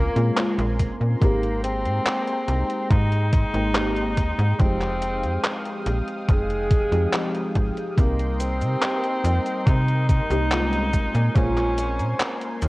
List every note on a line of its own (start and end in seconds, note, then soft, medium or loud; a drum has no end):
0.00 0.10 C#2 medium
0.00 0.10 G#3 medium
0.00 0.11 A#3 medium
0.00 0.75 A#3 loud
0.00 0.12 C#4 medium
0.00 0.12 F4 medium
0.00 1.18 A#4 medium
0.00 1.18 G#5 medium
0.00 1.18 A#5 medium
0.00 4.56 C6 medium
0.15 0.31 A#2 medium
0.15 0.32 G#3 medium
0.15 0.32 A#3 medium
0.15 0.32 C4 medium
0.15 0.32 C#4 medium
0.15 0.33 F4 medium
0.15 closed hi-hat soft
0.37 1.16 G#3 medium
0.37 1.17 A#3 medium
0.37 1.17 C4 medium
0.37 1.17 C#4 medium
0.37 1.17 F4 medium
0.37 clap loud
0.37 closed hi-hat medium
0.58 0.89 A#1 loud
0.58 closed hi-hat soft
0.79 kick medium
0.79 closed hi-hat loud
1.01 1.16 A#2 medium
1.01 closed hi-hat soft
1.20 1.87 G#1 medium
1.20 3.49 G#3 medium
1.20 7.94 G#3 medium
1.20 3.49 A#3 medium
1.20 1.61 A#3 loud
1.20 3.49 C4 medium
1.20 3.50 D#4 medium
1.20 3.50 G4 medium
1.20 7.94 G5 medium
1.20 4.56 A#5 medium
1.20 kick loud
1.20 closed hi-hat medium
1.43 closed hi-hat soft
1.64 2.87 C4 loud
1.64 closed hi-hat medium
1.85 2.00 G#2 loud
1.85 closed hi-hat soft
2.06 clap loud
2.06 closed hi-hat medium
2.28 closed hi-hat soft
2.48 2.64 C2 medium
2.48 closed hi-hat medium
2.70 closed hi-hat soft
2.90 3.45 G#2 loud
2.90 3.30 D#4 loud
2.90 kick loud
2.90 closed hi-hat medium
3.12 closed hi-hat soft
3.33 4.61 D#4 loud
3.33 kick loud
3.33 closed hi-hat medium
3.54 4.19 G#1 medium
3.54 3.70 G#3 medium
3.54 3.70 A#3 medium
3.54 3.70 C4 medium
3.54 3.70 D#4 medium
3.54 3.71 G4 medium
3.54 closed hi-hat soft
3.74 4.54 G#3 medium
3.74 4.54 A#3 medium
3.74 4.55 C4 medium
3.74 4.55 D#4 medium
3.74 4.55 G4 loud
3.74 clap loud
3.74 closed hi-hat medium
3.97 closed hi-hat soft
4.17 4.33 D#2 medium
4.17 kick medium
4.17 closed hi-hat loud
4.39 4.54 G#2 medium
4.39 closed hi-hat soft
4.58 5.25 F1 medium
4.58 6.86 F3 medium
4.58 6.87 G#3 medium
4.58 6.87 C4 medium
4.58 5.87 C4 loud
4.58 6.88 D#4 medium
4.58 6.88 G4 medium
4.58 7.94 F5 medium
4.58 7.94 D#6 medium
4.58 kick loud
4.58 closed hi-hat medium
4.81 clap soft
4.81 closed hi-hat soft
5.02 closed hi-hat medium
5.23 5.38 F2 medium
5.23 closed hi-hat soft
5.44 clap loud
5.44 closed hi-hat medium
5.65 closed hi-hat soft
5.86 6.02 A#1 medium
5.86 closed hi-hat medium
6.08 closed hi-hat soft
6.29 6.83 F1 loud
6.29 7.51 G#3 loud
6.29 kick loud
6.29 closed hi-hat medium
6.50 closed hi-hat soft
6.71 kick loud
6.71 closed hi-hat medium
6.92 7.07 F2 medium
6.92 7.08 F3 medium
6.92 7.08 G#3 medium
6.92 7.08 C4 medium
6.92 7.08 D#4 medium
6.92 7.09 G4 medium
6.92 closed hi-hat soft
7.12 7.92 F3 medium
7.12 7.93 G#3 medium
7.12 7.93 C4 medium
7.12 7.93 D#4 medium
7.12 7.93 G4 loud
7.12 clap loud
7.12 closed hi-hat medium
7.35 closed hi-hat soft
7.55 7.71 G#1 medium
7.55 kick medium
7.55 closed hi-hat medium
7.77 closed hi-hat soft
7.96 8.63 C2 medium
7.96 10.24 G3 medium
7.96 10.25 A#3 medium
7.96 8.42 A#3 medium
7.96 10.25 C4 medium
7.96 10.26 D#4 medium
7.96 10.26 G4 medium
7.96 10.91 A#4 medium
7.96 10.91 D#5 medium
7.96 10.91 G5 medium
7.96 10.91 C6 medium
7.96 kick loud
7.96 closed hi-hat medium
7.96 cabasa soft
8.19 closed hi-hat soft
8.40 9.68 C4 loud
8.40 closed hi-hat medium
8.40 cabasa medium
8.61 8.76 C3 loud
8.61 closed hi-hat soft
8.61 cabasa soft
8.82 clap loud
8.82 closed hi-hat medium
8.82 cabasa soft
9.04 closed hi-hat soft
9.24 9.40 F2 medium
9.24 closed hi-hat medium
9.24 cabasa medium
9.46 closed hi-hat soft
9.46 cabasa soft
9.67 10.21 C3 loud
9.67 10.08 D#4 loud
9.67 kick loud
9.67 closed hi-hat medium
9.67 cabasa soft
9.88 closed hi-hat soft
10.09 11.37 D#4 loud
10.09 kick loud
10.09 closed hi-hat medium
10.09 cabasa medium
10.30 10.95 C2 medium
10.30 10.46 G3 medium
10.30 10.46 A#3 medium
10.30 10.46 C4 medium
10.30 10.47 D#4 medium
10.30 10.47 G4 medium
10.30 closed hi-hat soft
10.30 cabasa soft
10.50 11.30 G#3 medium
10.50 11.31 A#3 medium
10.50 11.31 C4 medium
10.50 11.31 C#4 medium
10.50 11.31 F4 loud
10.50 clap loud
10.50 closed hi-hat medium
10.50 cabasa soft
10.73 closed hi-hat soft
10.93 11.09 A#1 medium
10.93 12.68 A#4 medium
10.93 12.61 G#5 medium
10.93 12.68 C6 medium
10.93 kick medium
10.93 closed hi-hat medium
10.93 cabasa medium
11.15 11.30 A#2 medium
11.15 closed hi-hat soft
11.15 cabasa soft
11.35 12.01 A#1 loud
11.35 12.68 G#3 medium
11.35 12.68 A#3 medium
11.35 12.63 C#4 loud
11.35 12.68 C#4 medium
11.35 12.68 F4 medium
11.35 12.68 C5 medium
11.35 kick loud
11.35 closed hi-hat medium
11.35 cabasa soft
11.57 clap soft
11.57 closed hi-hat soft
11.78 closed hi-hat medium
11.78 cabasa medium
11.99 12.14 A#2 loud
11.99 closed hi-hat soft
11.99 cabasa soft
12.20 clap loud
12.20 closed hi-hat medium
12.20 cabasa soft
12.42 closed hi-hat soft
12.62 12.68 D#2 medium
12.62 12.68 G5 medium
12.62 closed hi-hat medium
12.62 cabasa medium